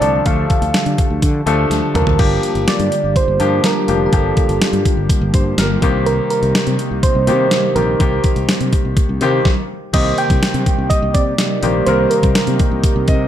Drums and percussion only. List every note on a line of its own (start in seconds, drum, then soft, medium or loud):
0.02 closed hi-hat medium
0.26 kick loud
0.26 closed hi-hat medium
0.50 kick medium
0.50 closed hi-hat medium
0.62 closed hi-hat soft
0.74 snare loud
0.74 closed hi-hat medium
0.86 closed hi-hat medium
0.98 kick medium
0.98 closed hi-hat medium
1.22 kick medium
1.22 closed hi-hat medium
1.47 closed hi-hat medium
1.71 snare medium
1.71 closed hi-hat medium
1.95 closed hi-hat medium
1.95 mid tom medium
2.07 floor tom medium
2.19 kick loud
2.19 crash medium
2.43 closed hi-hat medium
2.55 closed hi-hat soft
2.68 snare loud
2.68 closed hi-hat medium
2.80 closed hi-hat medium
2.92 closed hi-hat medium
3.16 kick medium
3.16 closed hi-hat medium
3.40 closed hi-hat medium
3.64 snare loud
3.64 closed hi-hat medium
3.88 closed hi-hat medium
4.13 kick loud
4.13 closed hi-hat medium
4.37 kick medium
4.37 closed hi-hat medium
4.49 closed hi-hat soft
4.62 snare loud
4.62 closed hi-hat medium
4.73 closed hi-hat medium
4.85 kick medium
4.85 closed hi-hat medium
5.09 kick medium
5.09 closed hi-hat medium
5.34 kick medium
5.34 closed hi-hat medium
5.58 snare loud
5.58 closed hi-hat medium
5.82 kick medium
5.82 closed hi-hat medium
6.06 closed hi-hat medium
6.30 closed hi-hat medium
6.43 closed hi-hat soft
6.55 snare loud
6.55 closed hi-hat medium
6.67 closed hi-hat medium
6.79 closed hi-hat medium
7.03 kick medium
7.03 closed hi-hat medium
7.27 closed hi-hat medium
7.51 snare loud
7.51 closed hi-hat medium
7.76 closed hi-hat medium
8.00 kick loud
8.00 closed hi-hat medium
8.24 kick medium
8.24 closed hi-hat medium
8.36 closed hi-hat soft
8.49 snare loud
8.49 closed hi-hat medium
8.61 closed hi-hat medium
8.73 kick medium
8.73 closed hi-hat medium
8.97 kick medium
8.97 closed hi-hat medium
9.21 closed hi-hat medium
9.45 kick loud
9.45 snare medium
9.94 kick loud
9.94 closed hi-hat medium
9.94 crash medium
10.18 closed hi-hat medium
10.30 kick medium
10.30 closed hi-hat soft
10.43 snare loud
10.43 closed hi-hat medium
10.54 closed hi-hat medium
10.66 kick medium
10.66 closed hi-hat medium
10.90 kick medium
10.90 closed hi-hat medium
11.15 kick medium
11.15 closed hi-hat medium
11.38 snare loud
11.38 closed hi-hat medium
11.63 closed hi-hat medium
11.86 closed hi-hat medium
12.11 closed hi-hat medium
12.23 kick medium
12.23 closed hi-hat soft
12.35 snare loud
12.35 closed hi-hat medium
12.47 closed hi-hat medium
12.59 kick medium
12.59 closed hi-hat medium
12.84 kick medium
12.84 closed hi-hat medium
13.08 kick medium
13.08 closed hi-hat medium